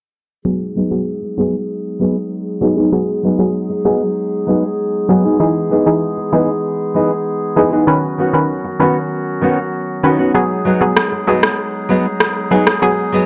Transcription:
0.45 F#3 G#3 B3 D#4 G#4
0.75 F#3 B3 D#4 G#4
0.91 F#3 B3 G#4
1.22 muted nylon-string guitar stroke
1.37 F#3 B3 D#4 G#4
1.99 F#3 B3 D#4 G#4
2.61 F#3 B3 D#4 G#4
2.77 F#3 B3 D#4 G#4
2.92 F#3 B3 G#4
3.23 F#3 B3 D#4 G#4
3.39 F#3 B3 G#4
3.70 muted nylon-string guitar stroke
3.85 F#3 B3 D#4 G#4
4.47 F#3 B3 D#4 G#4
5.09 F#3 B3 D#4 G#4
5.24 F#3 B3 D#4 G#4
5.40 E3 D#4 G#4
5.70 E3 B3 D#4 G#4
5.86 E3 D#4 G#4
6.17 muted nylon-string guitar stroke
6.32 E3 B3 D#4 G#4
6.94 E3 B3 D#4 G#4
7.56 E3 B3 D#4 G#4
7.72 E3 B3 D#4 G#4
7.87 D#3 F#3 C#4 F#4 B4
8.18 D#3 B3 C#4 F#4
8.33 D#3 C#4 B4
8.64 muted nylon-string guitar stroke
8.80 D#3 B3 C#4 F#4 B4
9.41 D#3 B3 C#4 F#4
10.03 D#3 B3 C#4 F#4 B4
10.19 D#3 B3 C#4 F#4
10.34 F#3 G#3 B3 D#4 G#4
10.65 F#3 B3 D#4 G#4
10.81 F#3 B3 G#4
10.97 cross-stick
11.12 muted nylon-string guitar stroke
11.27 F#3 B3 D#4 G#4
11.43 cross-stick
11.89 F#3 B3 D#4 G#4
12.20 cross-stick
12.51 F#3 B3 D#4 G#4
12.67 cross-stick
12.82 F#3 B3 G#4
13.12 F#3 B3 D#4 G#4

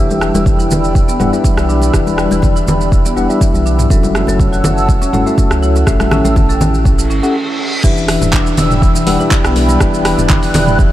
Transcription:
Already playing: E1 D4 E4 G4 B4 D5 E5 G5 B5 E6
0.11 high conga, shaker
0.21 G3, cross-stick, shaker
0.34 E1 E3, muted conga, high conga, shaker
0.46 kick, shaker
0.59 E4, shaker
0.70 E1, muted conga, high conga, low conga, shaker
0.84 shaker
0.95 kick, shaker
1.08 B3, muted conga, shaker
1.20 E1 G3 D4 E4 G4 B4 F#5, mid tom, high conga, shaker
1.33 G3 D4 E4 G4 B4 E5, shaker
1.44 E3, kick, muted conga, shaker
1.57 B1, cross-stick, shaker
1.69 D4, shaker
1.82 muted conga, shaker
1.93 E1 E3 D4 E4 G4 B4 E5, kick, cross-stick, shaker
2.07 high conga, shaker
2.18 G3, cross-stick, shaker
2.31 E1 E3, muted conga, high conga, shaker
2.42 kick, low conga, shaker
2.56 E4, shaker
2.67 E1, high conga, low conga, shaker
2.81 shaker
2.92 kick, shaker
3.05 B3, muted conga, shaker
3.16 E1 G3 D4 E4 G4 B4 F#5, shaker
3.30 G3 D4 E4 G4 B4 E5, shaker
3.41 E3, kick, muted conga, shaker
3.54 B1, high conga, shaker
3.66 D4, shaker
3.79 mid tom, muted conga, shaker
3.90 F#1 F#3 C#4 E4 F#4 A4 C#5 E5 F#5 A5 E6, kick, shaker
4.03 high conga, shaker
4.15 A3, cross-stick, shaker
4.27 F#1 F#3, muted conga, high conga, shaker
4.40 kick, shaker
4.53 F#4, shaker
4.64 F#1, muted conga, high conga, low conga, shaker
4.78 shaker
4.89 kick, shaker
5.02 C#4, muted conga, shaker
5.13 F#1 A3 C#4 E4 F#4 A4 F#5, mid tom, high conga, shaker
5.26 A3 C#4 E4 F#4 A4 E5, shaker
5.38 F#3, kick, muted conga, shaker
5.51 C#2, cross-stick, shaker
5.63 E4, shaker
5.76 muted conga, shaker
5.87 A1 A3 C#4 E4 G4 A4 E5 G5 A5 E6, kick, cross-stick, shaker
6.00 cross-stick, high conga, shaker
6.11 C#4, cross-stick, low conga, shaker
6.25 A1 A3, muted conga, high conga, shaker
6.36 kick, low conga, shaker
6.49 A4, shaker
6.60 A1, muted conga, high conga, low conga, shaker
6.74 shaker
6.85 kick, reverse cymbal, shaker
6.98 E4, muted conga, shaker
7.10 G1 C#4, shaker
7.23 C#4 E4 G4 A4 F#5, shaker
7.84 E1 E3 D4 E4 G4 B4 D5 E5 G5 B5 E6, kick, crash, shaker
7.97 shaker
8.08 E3, cross-stick, open hi-hat, shaker
8.21 E1, mid tom, muted conga, high conga, shaker
8.33 D4, kick, clap, shaker
8.46 shaker
8.57 E1 B2, open hi-hat, muted conga, low conga, shaker
8.71 mid tom, high conga, shaker
8.82 E3, kick, shaker
8.95 E3, muted conga, shaker
9.07 E1 D4 E4 G4 B4 F#5, open hi-hat, high conga, shaker
9.20 D4 E4 G4 B4 E5, high conga, shaker
9.31 kick, clap, muted conga, shaker
9.44 B1 B3, cross-stick, shaker
9.56 open hi-hat, high conga, shaker
9.69 G3, muted conga, shaker
9.80 E1 E3 D4 E4 G4 B4 E5 F#6, kick, cross-stick, shaker
9.94 shaker
10.05 E3, cross-stick, open hi-hat, shaker
10.18 E1, mid tom, muted conga, high conga, shaker
10.29 D4, kick, clap, low conga, shaker
10.43 open hi-hat, shaker
10.54 E1 B2, open hi-hat, low conga, shaker
10.67 mid tom, high conga, shaker
10.79 E3, kick, shaker

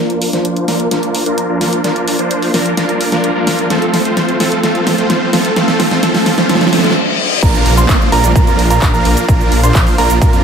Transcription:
0.00 F3 A#3 D4 F4 A#4, riser
0.10 closed hi-hat
0.22 open hi-hat
0.33 F3 A#3 D4 F4 C5, snare, closed hi-hat
0.45 closed hi-hat
0.56 closed hi-hat
0.68 F3 A#3 D4 F4 A#4, snare, open hi-hat
0.80 closed hi-hat
0.91 F3 A#3 D4 F4 A#4, snare, closed hi-hat
1.03 closed hi-hat
1.15 open hi-hat
1.26 F3 A#3 D4 F4 A#4, closed hi-hat
1.38 closed hi-hat
1.49 F3 A#3 D4 F4 A#4
1.61 snare, open hi-hat
1.73 closed hi-hat
1.84 F3 A#3 D4 F4 A#4, snare, closed hi-hat
1.96 closed hi-hat
2.08 open hi-hat
2.19 F3 A#3 D4 F4 C5, closed hi-hat
2.31 closed hi-hat
2.42 open hi-hat
2.54 F3 A#3 D4 F4 A#4, snare, open hi-hat
2.66 closed hi-hat
2.77 F3 A#3 D4 F4 A#4, snare, closed hi-hat
2.89 closed hi-hat
3.01 open hi-hat
3.12 F3 A#3 D4 F4 A#4, snare, closed hi-hat
3.24 closed hi-hat
3.35 F3 A#3 D4 F4 A#4
3.47 snare, open hi-hat
3.59 closed hi-hat
3.70 F3 A3 C4 F4 A4, snare, closed hi-hat
3.82 closed hi-hat
3.94 snare, open hi-hat
4.05 F3 A3 C4 F4 C5, closed hi-hat
4.17 snare, closed hi-hat
4.29 closed hi-hat
4.40 F3 A3 C4 F4 A4, snare, open hi-hat
4.52 closed hi-hat
4.63 F3 A3 C4 F4 A4, snare, closed hi-hat
4.75 closed hi-hat
4.87 snare, open hi-hat
4.98 F3 A3 C4 F4 C5, closed hi-hat
5.10 snare, closed hi-hat
5.33 F3 A3 C4 F4 A4, snare, open hi-hat
5.45 closed hi-hat
5.56 F3 A3 C4 F4 A4, snare, closed hi-hat
5.68 snare, closed hi-hat
5.80 snare, open hi-hat
5.91 F3 A3 C4 F4 C5, snare, closed hi-hat
6.03 F3 A3 C4 F4 A4, snare, closed hi-hat
6.15 snare, open hi-hat
6.26 snare, open hi-hat
6.38 F3 A3 C4 F4 C5, snare, closed hi-hat
6.49 F3 A3 C4 F4 A4, snare, closed hi-hat, reverse cymbal
6.55 snare
6.61 snare, closed hi-hat
6.67 snare
6.73 F3 A3 C4 F4 A4, snare, open hi-hat
6.79 snare
6.84 snare, closed hi-hat
6.90 snare
7.42 A#1 F3 A#3 D4 F4 A#4 A#5, kick, closed hi-hat, crash, downlifter, cabasa
7.55 cabasa
7.66 A#1, open hi-hat
7.77 F3 A#3 D4 F4 C5 C6, closed hi-hat, cabasa
7.89 A#1, kick, clap, closed hi-hat, cabasa
8.01 cabasa
8.12 A#1 F3 A#3 D4 F4 A#4 A#5, open hi-hat
8.24 A#1, closed hi-hat, cabasa
8.35 A#2 F3 A#3 A#4 A#5, kick, closed hi-hat, cabasa
8.47 F2, closed hi-hat, cabasa
8.59 A#1, open hi-hat
8.70 F3 A#3 D4 F4 A#4 A#5, closed hi-hat, cabasa
8.82 A#1, kick, clap, closed hi-hat, cabasa
8.94 F3 A#3 D4 F4 A#4 A#5, cabasa
9.05 A#1, open hi-hat
9.17 closed hi-hat, cabasa
9.28 A#1 F3 A#3 D4 F4 A#4 A#5, kick, closed hi-hat, cabasa
9.41 cabasa
9.52 A#1, open hi-hat
9.63 F3 A#3 D4 F4 C5 C6, closed hi-hat, cabasa
9.75 A#1, kick, clap, closed hi-hat, cabasa
9.87 open hi-hat, cabasa
9.98 A#1 F3 A#3 D4 F4 A#4 A#5, open hi-hat
10.10 A#1, closed hi-hat, cabasa
10.21 A#2 F3 A#3 D4 F4 A#4 A#5, kick, closed hi-hat, cabasa
10.33 F2, closed hi-hat, cabasa

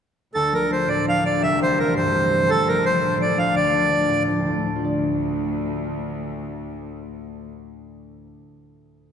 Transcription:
0.34 D2 A4
0.52 F3 A3 D4 A#4
0.70 F3 A3 D4 C5
0.87 A2 D5
1.04 F3 A3 D4
1.09 F5
1.22 F3 A3 D4 D5
1.41 C2 E5
1.59 E3 G3 C4 C5
1.76 E3 G3 C4 A#4
1.94 G2 C5
2.12 E3 G3 C4
2.30 E3 G3 C4
2.47 D2 A4
2.67 F3 A3 D4 A#4
2.83 F3 A3 D4 C5
3.02 A2
3.19 F3 A3 D4 D5
3.36 F3 A3 D4 F5
3.54 D2 D5
3.73 F3 A3 D4
3.90 F3 A3 D4
4.08 A2
4.27 F3 A3 D4
4.39 D2
4.44 F3 A3 D4
4.49 A2
4.58 A3
4.62 D2
4.67 D4
4.76 F4
4.84 D5

